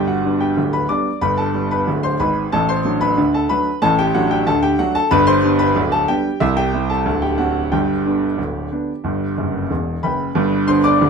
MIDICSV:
0, 0, Header, 1, 2, 480
1, 0, Start_track
1, 0, Key_signature, 1, "major"
1, 0, Tempo, 650054
1, 900, Time_signature, 2, 2, 24, 8
1, 5219, Tempo, 657895
1, 8159, End_track
2, 0, Start_track
2, 0, Title_t, "Grand piano"
2, 0, Program_c, 0, 0
2, 0, Note_on_c, 0, 31, 64
2, 0, Note_on_c, 0, 43, 72
2, 56, Note_on_c, 0, 78, 69
2, 63, Note_on_c, 0, 66, 54
2, 94, Control_c, 0, 64, 127
2, 144, Note_off_c, 0, 43, 0
2, 145, Note_off_c, 0, 31, 0
2, 180, Note_on_c, 0, 55, 40
2, 180, Note_on_c, 0, 59, 38
2, 185, Note_on_c, 0, 62, 47
2, 285, Note_off_c, 0, 66, 0
2, 299, Note_off_c, 0, 78, 0
2, 299, Note_on_c, 0, 79, 69
2, 307, Note_on_c, 0, 67, 55
2, 312, Note_off_c, 0, 55, 0
2, 312, Note_off_c, 0, 59, 0
2, 316, Note_off_c, 0, 62, 0
2, 418, Note_on_c, 0, 38, 61
2, 419, Note_on_c, 0, 26, 64
2, 427, Control_c, 0, 64, 0
2, 528, Note_off_c, 0, 67, 0
2, 539, Note_on_c, 0, 83, 71
2, 540, Note_off_c, 0, 79, 0
2, 548, Note_on_c, 0, 71, 54
2, 623, Note_off_c, 0, 38, 0
2, 624, Note_off_c, 0, 26, 0
2, 656, Note_off_c, 0, 71, 0
2, 657, Note_on_c, 0, 86, 75
2, 660, Note_off_c, 0, 83, 0
2, 661, Note_on_c, 0, 55, 41
2, 662, Note_on_c, 0, 59, 42
2, 667, Note_on_c, 0, 62, 43
2, 667, Note_on_c, 0, 74, 57
2, 793, Note_off_c, 0, 55, 0
2, 793, Note_off_c, 0, 59, 0
2, 797, Note_off_c, 0, 62, 0
2, 887, Note_off_c, 0, 74, 0
2, 897, Note_on_c, 0, 83, 87
2, 898, Note_on_c, 0, 31, 67
2, 899, Note_off_c, 0, 86, 0
2, 900, Note_on_c, 0, 43, 73
2, 906, Note_on_c, 0, 71, 62
2, 1015, Note_off_c, 0, 71, 0
2, 1015, Note_on_c, 0, 81, 75
2, 1018, Note_off_c, 0, 83, 0
2, 1028, Note_on_c, 0, 69, 61
2, 1036, Control_c, 0, 64, 127
2, 1103, Note_off_c, 0, 31, 0
2, 1104, Note_off_c, 0, 43, 0
2, 1138, Note_on_c, 0, 55, 46
2, 1141, Note_on_c, 0, 59, 41
2, 1142, Note_on_c, 0, 62, 48
2, 1247, Note_off_c, 0, 69, 0
2, 1257, Note_off_c, 0, 81, 0
2, 1264, Note_on_c, 0, 83, 78
2, 1270, Note_off_c, 0, 55, 0
2, 1272, Note_off_c, 0, 59, 0
2, 1272, Note_on_c, 0, 71, 58
2, 1273, Note_off_c, 0, 62, 0
2, 1383, Note_on_c, 0, 26, 65
2, 1384, Note_on_c, 0, 38, 62
2, 1387, Control_c, 0, 64, 0
2, 1489, Note_off_c, 0, 71, 0
2, 1501, Note_off_c, 0, 83, 0
2, 1501, Note_on_c, 0, 84, 79
2, 1509, Note_on_c, 0, 72, 58
2, 1586, Note_off_c, 0, 26, 0
2, 1586, Note_off_c, 0, 38, 0
2, 1616, Note_off_c, 0, 72, 0
2, 1620, Note_off_c, 0, 84, 0
2, 1622, Note_on_c, 0, 32, 65
2, 1622, Note_on_c, 0, 83, 75
2, 1625, Note_on_c, 0, 44, 68
2, 1630, Note_on_c, 0, 71, 59
2, 1813, Note_off_c, 0, 32, 0
2, 1815, Note_off_c, 0, 44, 0
2, 1848, Note_off_c, 0, 71, 0
2, 1860, Note_off_c, 0, 83, 0
2, 1863, Note_on_c, 0, 81, 90
2, 1865, Note_on_c, 0, 45, 78
2, 1867, Note_on_c, 0, 33, 71
2, 1871, Note_on_c, 0, 69, 71
2, 1977, Note_off_c, 0, 69, 0
2, 1981, Note_off_c, 0, 81, 0
2, 1984, Note_on_c, 0, 84, 87
2, 1991, Note_on_c, 0, 72, 65
2, 2011, Control_c, 0, 64, 127
2, 2067, Note_off_c, 0, 33, 0
2, 2067, Note_off_c, 0, 45, 0
2, 2103, Note_on_c, 0, 54, 48
2, 2106, Note_on_c, 0, 57, 46
2, 2109, Note_on_c, 0, 62, 52
2, 2209, Note_off_c, 0, 72, 0
2, 2221, Note_off_c, 0, 84, 0
2, 2221, Note_on_c, 0, 83, 89
2, 2229, Note_on_c, 0, 71, 64
2, 2233, Note_off_c, 0, 54, 0
2, 2236, Note_off_c, 0, 57, 0
2, 2238, Note_off_c, 0, 62, 0
2, 2342, Note_on_c, 0, 38, 70
2, 2344, Note_on_c, 0, 50, 71
2, 2349, Control_c, 0, 64, 0
2, 2447, Note_off_c, 0, 71, 0
2, 2459, Note_off_c, 0, 83, 0
2, 2469, Note_on_c, 0, 81, 77
2, 2475, Note_on_c, 0, 69, 60
2, 2544, Note_off_c, 0, 38, 0
2, 2545, Note_off_c, 0, 50, 0
2, 2579, Note_off_c, 0, 69, 0
2, 2579, Note_on_c, 0, 83, 88
2, 2583, Note_on_c, 0, 54, 43
2, 2584, Note_off_c, 0, 81, 0
2, 2586, Note_on_c, 0, 57, 47
2, 2586, Note_on_c, 0, 62, 52
2, 2589, Note_on_c, 0, 71, 65
2, 2714, Note_off_c, 0, 54, 0
2, 2716, Note_off_c, 0, 57, 0
2, 2716, Note_off_c, 0, 62, 0
2, 2807, Note_off_c, 0, 71, 0
2, 2819, Note_off_c, 0, 83, 0
2, 2820, Note_on_c, 0, 81, 106
2, 2821, Note_on_c, 0, 33, 80
2, 2821, Note_on_c, 0, 45, 86
2, 2828, Note_on_c, 0, 69, 77
2, 2935, Note_off_c, 0, 69, 0
2, 2939, Note_off_c, 0, 81, 0
2, 2944, Note_on_c, 0, 79, 94
2, 2952, Note_on_c, 0, 67, 71
2, 2963, Control_c, 0, 64, 127
2, 3023, Note_off_c, 0, 33, 0
2, 3023, Note_off_c, 0, 45, 0
2, 3057, Note_off_c, 0, 67, 0
2, 3061, Note_off_c, 0, 79, 0
2, 3061, Note_on_c, 0, 78, 84
2, 3062, Note_on_c, 0, 54, 57
2, 3065, Note_on_c, 0, 57, 52
2, 3068, Note_on_c, 0, 62, 53
2, 3069, Note_on_c, 0, 66, 65
2, 3175, Note_off_c, 0, 66, 0
2, 3179, Note_off_c, 0, 78, 0
2, 3181, Note_on_c, 0, 79, 84
2, 3189, Note_on_c, 0, 67, 63
2, 3192, Note_off_c, 0, 54, 0
2, 3195, Note_off_c, 0, 57, 0
2, 3197, Note_off_c, 0, 62, 0
2, 3295, Note_off_c, 0, 67, 0
2, 3299, Note_off_c, 0, 79, 0
2, 3299, Note_on_c, 0, 81, 93
2, 3301, Note_on_c, 0, 38, 81
2, 3301, Note_on_c, 0, 50, 75
2, 3304, Control_c, 0, 64, 0
2, 3305, Note_on_c, 0, 69, 75
2, 3413, Note_off_c, 0, 69, 0
2, 3416, Note_on_c, 0, 79, 90
2, 3418, Note_off_c, 0, 81, 0
2, 3424, Note_on_c, 0, 67, 66
2, 3503, Note_off_c, 0, 38, 0
2, 3503, Note_off_c, 0, 50, 0
2, 3532, Note_off_c, 0, 67, 0
2, 3536, Note_off_c, 0, 79, 0
2, 3537, Note_on_c, 0, 78, 86
2, 3539, Note_on_c, 0, 54, 53
2, 3540, Note_on_c, 0, 57, 53
2, 3544, Note_on_c, 0, 62, 52
2, 3545, Note_on_c, 0, 66, 65
2, 3653, Note_off_c, 0, 66, 0
2, 3655, Note_on_c, 0, 81, 96
2, 3656, Note_off_c, 0, 78, 0
2, 3665, Note_on_c, 0, 69, 72
2, 3670, Note_off_c, 0, 54, 0
2, 3671, Note_off_c, 0, 57, 0
2, 3674, Note_off_c, 0, 62, 0
2, 3772, Note_off_c, 0, 69, 0
2, 3772, Note_on_c, 0, 83, 107
2, 3773, Note_on_c, 0, 43, 97
2, 3776, Note_off_c, 0, 81, 0
2, 3776, Note_on_c, 0, 31, 92
2, 3781, Note_on_c, 0, 71, 92
2, 3890, Note_off_c, 0, 71, 0
2, 3890, Note_on_c, 0, 84, 104
2, 3894, Note_off_c, 0, 83, 0
2, 3896, Note_on_c, 0, 72, 81
2, 3922, Control_c, 0, 64, 127
2, 3978, Note_off_c, 0, 43, 0
2, 3980, Note_off_c, 0, 31, 0
2, 4006, Note_on_c, 0, 55, 56
2, 4011, Note_on_c, 0, 59, 52
2, 4016, Note_on_c, 0, 62, 56
2, 4119, Note_off_c, 0, 72, 0
2, 4127, Note_on_c, 0, 83, 98
2, 4133, Note_off_c, 0, 84, 0
2, 4136, Note_on_c, 0, 71, 75
2, 4141, Note_off_c, 0, 55, 0
2, 4144, Note_off_c, 0, 59, 0
2, 4148, Note_off_c, 0, 62, 0
2, 4249, Note_on_c, 0, 26, 76
2, 4251, Note_on_c, 0, 38, 84
2, 4262, Control_c, 0, 64, 0
2, 4359, Note_off_c, 0, 71, 0
2, 4370, Note_on_c, 0, 81, 91
2, 4371, Note_off_c, 0, 83, 0
2, 4377, Note_on_c, 0, 69, 70
2, 4456, Note_off_c, 0, 26, 0
2, 4457, Note_off_c, 0, 38, 0
2, 4487, Note_off_c, 0, 69, 0
2, 4491, Note_on_c, 0, 55, 46
2, 4492, Note_on_c, 0, 79, 92
2, 4493, Note_off_c, 0, 81, 0
2, 4496, Note_on_c, 0, 59, 47
2, 4499, Note_on_c, 0, 67, 69
2, 4500, Note_on_c, 0, 62, 56
2, 4624, Note_off_c, 0, 55, 0
2, 4628, Note_off_c, 0, 59, 0
2, 4630, Note_off_c, 0, 62, 0
2, 4720, Note_off_c, 0, 67, 0
2, 4728, Note_on_c, 0, 76, 97
2, 4729, Note_on_c, 0, 36, 96
2, 4731, Note_on_c, 0, 48, 86
2, 4733, Note_off_c, 0, 79, 0
2, 4734, Note_on_c, 0, 64, 74
2, 4846, Note_off_c, 0, 64, 0
2, 4849, Note_on_c, 0, 79, 96
2, 4851, Note_off_c, 0, 76, 0
2, 4858, Note_on_c, 0, 67, 74
2, 4905, Control_c, 0, 64, 127
2, 4936, Note_off_c, 0, 36, 0
2, 4937, Note_off_c, 0, 48, 0
2, 4971, Note_on_c, 0, 55, 51
2, 4976, Note_on_c, 0, 60, 49
2, 4978, Note_on_c, 0, 64, 54
2, 5080, Note_off_c, 0, 67, 0
2, 5092, Note_on_c, 0, 81, 83
2, 5093, Note_off_c, 0, 79, 0
2, 5100, Note_on_c, 0, 69, 60
2, 5105, Note_off_c, 0, 55, 0
2, 5108, Note_off_c, 0, 60, 0
2, 5110, Note_off_c, 0, 64, 0
2, 5209, Note_on_c, 0, 38, 79
2, 5212, Note_on_c, 0, 26, 68
2, 5222, Control_c, 0, 64, 0
2, 5321, Note_off_c, 0, 69, 0
2, 5330, Note_on_c, 0, 79, 72
2, 5334, Note_off_c, 0, 81, 0
2, 5337, Control_c, 0, 64, 127
2, 5337, Note_on_c, 0, 67, 57
2, 5416, Note_off_c, 0, 38, 0
2, 5417, Note_off_c, 0, 26, 0
2, 5445, Note_on_c, 0, 78, 70
2, 5447, Note_on_c, 0, 50, 41
2, 5448, Note_off_c, 0, 67, 0
2, 5452, Note_off_c, 0, 79, 0
2, 5454, Note_on_c, 0, 60, 47
2, 5457, Note_on_c, 0, 62, 42
2, 5457, Note_on_c, 0, 66, 58
2, 5582, Note_off_c, 0, 50, 0
2, 5587, Note_off_c, 0, 60, 0
2, 5588, Note_off_c, 0, 62, 0
2, 5680, Note_off_c, 0, 66, 0
2, 5691, Note_off_c, 0, 78, 0
2, 5693, Note_on_c, 0, 79, 72
2, 5695, Note_on_c, 0, 31, 63
2, 5695, Note_on_c, 0, 43, 69
2, 5703, Note_on_c, 0, 67, 54
2, 5705, Control_c, 0, 64, 0
2, 5828, Control_c, 0, 64, 127
2, 5900, Note_off_c, 0, 31, 0
2, 5900, Note_off_c, 0, 43, 0
2, 5937, Note_on_c, 0, 50, 36
2, 5943, Note_on_c, 0, 59, 39
2, 5945, Note_on_c, 0, 62, 40
2, 6069, Note_off_c, 0, 50, 0
2, 6073, Note_off_c, 0, 59, 0
2, 6075, Note_off_c, 0, 62, 0
2, 6175, Note_on_c, 0, 26, 57
2, 6177, Note_on_c, 0, 38, 50
2, 6186, Control_c, 0, 64, 0
2, 6380, Note_off_c, 0, 26, 0
2, 6381, Note_off_c, 0, 38, 0
2, 6422, Note_on_c, 0, 50, 34
2, 6427, Note_on_c, 0, 59, 39
2, 6428, Note_on_c, 0, 62, 41
2, 6553, Note_off_c, 0, 50, 0
2, 6557, Note_off_c, 0, 59, 0
2, 6558, Note_off_c, 0, 62, 0
2, 6657, Note_on_c, 0, 31, 56
2, 6660, Note_on_c, 0, 43, 59
2, 6790, Control_c, 0, 64, 127
2, 6863, Note_off_c, 0, 31, 0
2, 6864, Note_off_c, 0, 43, 0
2, 6901, Note_on_c, 0, 30, 54
2, 6904, Note_on_c, 0, 42, 51
2, 7081, Note_off_c, 0, 30, 0
2, 7083, Note_off_c, 0, 42, 0
2, 7115, Note_off_c, 0, 67, 0
2, 7139, Note_off_c, 0, 79, 0
2, 7139, Note_on_c, 0, 28, 52
2, 7142, Note_on_c, 0, 40, 53
2, 7146, Control_c, 0, 64, 0
2, 7320, Note_off_c, 0, 28, 0
2, 7322, Note_off_c, 0, 40, 0
2, 7380, Note_on_c, 0, 83, 68
2, 7383, Note_on_c, 0, 30, 54
2, 7383, Note_on_c, 0, 42, 52
2, 7390, Note_on_c, 0, 71, 51
2, 7391, Note_on_c, 0, 79, 49
2, 7562, Note_off_c, 0, 30, 0
2, 7562, Note_off_c, 0, 42, 0
2, 7615, Note_on_c, 0, 31, 78
2, 7615, Note_on_c, 0, 43, 90
2, 7782, Control_c, 0, 64, 127
2, 7820, Note_off_c, 0, 31, 0
2, 7820, Note_off_c, 0, 43, 0
2, 7835, Note_off_c, 0, 71, 0
2, 7835, Note_off_c, 0, 79, 0
2, 7851, Note_on_c, 0, 84, 93
2, 7854, Note_on_c, 0, 50, 49
2, 7857, Note_on_c, 0, 59, 48
2, 7858, Note_off_c, 0, 83, 0
2, 7861, Note_on_c, 0, 62, 51
2, 7861, Note_on_c, 0, 72, 66
2, 7971, Note_off_c, 0, 72, 0
2, 7971, Note_on_c, 0, 86, 94
2, 7974, Note_off_c, 0, 84, 0
2, 7980, Note_on_c, 0, 74, 73
2, 7986, Note_off_c, 0, 50, 0
2, 7989, Note_off_c, 0, 59, 0
2, 7992, Note_off_c, 0, 62, 0
2, 8095, Note_on_c, 0, 26, 78
2, 8096, Note_on_c, 0, 38, 74
2, 8102, Control_c, 0, 64, 0
2, 8159, Note_off_c, 0, 26, 0
2, 8159, Note_off_c, 0, 38, 0
2, 8159, Note_off_c, 0, 74, 0
2, 8159, Note_off_c, 0, 86, 0
2, 8159, End_track
0, 0, End_of_file